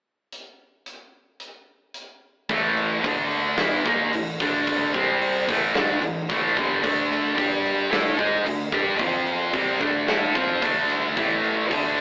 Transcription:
0.32 closed hi-hat
0.86 closed hi-hat
1.40 closed hi-hat
1.94 closed hi-hat
2.49 A1 A2 E3 A3, kick, crash
2.77 crash
3.04 D2 D3 A3 D4, kick, crash
3.31 crash
3.58 E2 E3 B3 E4, snare, crash
3.85 D#2 D#3 A#3 D#4, kick, crash
4.13 A1 A2 E3, crash
4.40 D2 D3 A3 D4, kick, crash
4.67 kick, crash
4.94 C2 C3 G3 C4, kick, crash
5.22 crash
5.48 A1 A2 E3 A3, kick, crash
5.75 D2 D3 A3 D4, snare, crash
6.02 A1 A2 E3, crash
6.29 A1 A2 E3 A3, kick, crash
6.56 G1 G2 D3 G3, kick, crash
6.82 D2 D3 A3 D4, kick, crash
7.12 crash
7.36 G2 G3 D4 G4, kick, crash
7.65 crash
7.91 A2 A3 E4 A4, snare, crash
8.18 G#2 G#3 D#4 G#4, kick, crash
8.45 D2 D3 A3, crash
8.72 G2 G3 D4 G4, kick, snare, crash
8.99 F2 F3 C4 F4, kick, crash
9.27 crash
9.53 C2 C3 G3 C4, kick, crash
9.80 D2 D3 A3 D4, kick, crash
10.08 A2 A3 E4 A4, snare, crash
10.34 F2 F3 C4 F4, kick, crash
10.62 D2 D3 A3 D4, kick, crash
10.90 snare, crash
11.17 A1 A2 E3 A3, kick, crash
11.44 crash
11.71 D2 D3 A3 D4, kick, crash

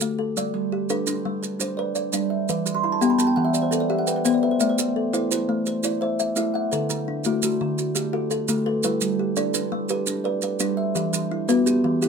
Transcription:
Already playing: A4
0.01 A3, maracas
0.19 A4
0.37 G3 D5, maracas
0.54 G3
0.72 G4
0.89 D4 A4 B4, maracas
1.07 D4, maracas
1.25 G3
1.43 B4, maracas
1.59 D4 C5, maracas
1.77 B4 D5
1.95 D5, maracas
2.12 G3 D4 D5, maracas
2.30 E5
2.49 E3 B4, maracas
2.66 E3, maracas
2.75 C6
2.83 E4 B5
2.92 A5
3.01 B3 G4 G5, maracas
3.10 B5
3.18 B3 A5, maracas
3.27 G5
3.36 E3 F#5
3.45 E5
3.53 D5, maracas
3.62 C5
3.71 B3 A4 B4, maracas
3.80 D5
3.90 G4 E5
3.99 F#5
4.07 B4 G5, maracas
4.16 B4
4.25 E3 B3 C5, maracas
4.34 D5
4.43 B4 E5
4.51 C5
4.59 A3 D5 E5, maracas
4.69 C5
4.79 A3, maracas
4.96 A4
5.13 E4 B4 C5, maracas
5.31 E4 C5, maracas
5.49 A3
5.66 C5, maracas
5.83 E4 D5, maracas
6.01 C5 E5
6.19 E5, maracas
6.36 A3 E4 E5, maracas
6.54 E5 F#5
6.72 D3 A4 B4, maracas
6.90 D3, maracas
7.08 D4
7.24 A3 E4 F#4, maracas
7.42 A3 F#4, maracas
7.61 D3
7.78 F#4, maracas
7.95 A3 G4, maracas
8.13 F#4 A4
8.31 A4, maracas
8.48 D3 A3 A4, maracas
8.66 A4 B4
8.83 G3 E4 B4, maracas
9.01 G3, maracas
9.19 G4
9.36 D4 A4 D5, maracas
9.54 D4 B4, maracas
9.72 G3
9.89 G4 B4, maracas
10.06 D4, maracas
10.24 B4 D5
10.42 B4, maracas
10.60 G3 D4 B4, maracas
10.77 E5
10.95 E3 G4, maracas
11.13 E3, maracas
11.31 E4
11.48 B3 F#4 B4, maracas
11.66 B3 G4, maracas
11.84 E3
12.02 E4 G4, maracas

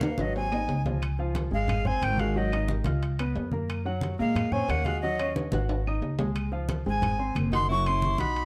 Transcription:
Already playing: D#2 A#3 F5
0.01 A#3 A#4, high conga, high timbale
0.18 G#1 F#3 F#4 D#5, high conga, high timbale
0.35 C4 G#5, high conga, low timbale
0.52 D#4 D#5, high conga, low timbale, claves
0.68 C#2, high conga, low timbale
0.86 F3 F4, high conga, low timbale
1.02 high conga, high timbale, claves
1.18 F3 F4 F5, high conga
1.35 high conga, high timbale
1.51 G#1 G#3 G#4 F5 G#5, high conga
1.68 high conga, low conga, high timbale, claves
1.85 C4 C5 G#5 C6, high conga, low conga
2.02 G#1 C4 G5, high conga, high timbale, claves
2.17 G#3 F#4 F5 F#5 F#6, high conga, high timbale
2.35 F#3 F#4 D#5 F#5, high conga
2.52 D#4 D#5 D#6, high conga, high timbale, claves
2.68 high conga
2.84 C#2 F4 F5 F6, high conga, high timbale
3.02 high conga, high timbale
3.19 B3 B4 B5, high conga, high timbale, claves
3.35 F#2, high conga, low timbale
3.52 A#3 A#4 A#5, high conga
3.68 high conga, high timbale, claves
3.85 F#3 F#4 F#5, high conga
4.01 high conga, high timbale
4.18 A#2 G#3 A#3 A#4 F5 A#5, high conga
4.36 high conga, low conga, high timbale, claves
4.52 C4 C#4 C#5 G#5 C#6, high conga, low conga
4.68 D#2 A#3 F#5, high conga, high timbale, low timbale, claves
4.85 G#3 F#4 F5 F#5 F#6, high conga, high timbale
5.02 F#3 F#4 D#5 F#5, high conga
5.19 C#4 C#5 C#6, high conga, high timbale, claves
5.36 high conga, high timbale
5.52 G#1 F#4 F#5 F#6, high conga, high timbale
5.69 high conga, high timbale
5.86 D#4 D#5 D#6, high conga, claves
6.02 C#2, high conga, low timbale
6.19 G#3 G#4 G#5, high conga, low timbale
6.35 high conga, high timbale, claves
6.52 F3 F4 F5, high conga
6.69 high conga, high timbale
6.85 G#1 G#3 C4 G#4 G#5, high conga
7.02 high conga, low conga, high timbale, claves
7.19 C4 C5 C6, high conga
7.35 F#1, high conga, high timbale, claves
7.52 D#4 F#4 F#5 C6 F#6, high conga, high timbale
7.68 F#3 E4 F#4 F#5 C#6, high conga
7.85 C#4 E4 C#5 C6, high conga, high timbale, claves
8.02 high conga
8.18 B1 D#4 F#4 F#5 B5 F#6, high conga, high timbale
8.35 high conga, high timbale

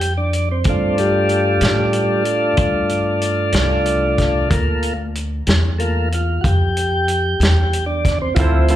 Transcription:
Already playing: F2 G4
0.01 closed hi-hat
0.18 D4
0.33 closed hi-hat
0.52 C4
0.64 G2 A3, kick, closed hi-hat
0.69 D4 F4
0.98 G3, closed hi-hat
1.29 closed hi-hat
1.61 A2, snare, closed hi-hat
1.93 closed hi-hat
2.25 closed hi-hat
2.57 G2, kick, closed hi-hat
2.89 closed hi-hat
3.21 closed hi-hat
3.52 C2, snare, closed hi-hat
3.86 closed hi-hat
4.18 kick, snare, closed hi-hat
4.49 D2 A3 A#3 F4, kick, closed hi-hat
4.83 closed hi-hat
5.15 closed hi-hat
5.47 E2, snare, closed hi-hat
5.78 A3 A#3 F4, closed hi-hat
6.12 F4, closed hi-hat
6.41 F2 F#4, kick, closed hi-hat
6.46 G4
6.77 closed hi-hat
7.08 closed hi-hat
7.40 E2, snare, closed hi-hat
7.73 closed hi-hat
7.86 D4
8.05 kick, snare, closed hi-hat
8.22 C4
8.35 D2 F3 C4 E4 F4, kick, closed hi-hat
8.39 A4 C5
8.68 A3 E4 F4 A4 C5, closed hi-hat

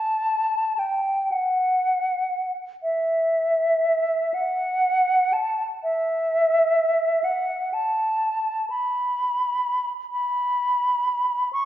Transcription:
Already playing: A5
0.79 G5
1.31 F#5
2.83 E5
4.34 F#5
5.33 A5
5.83 E5
7.24 F#5
7.73 A5
8.70 B5
10.12 B5
11.53 C#6

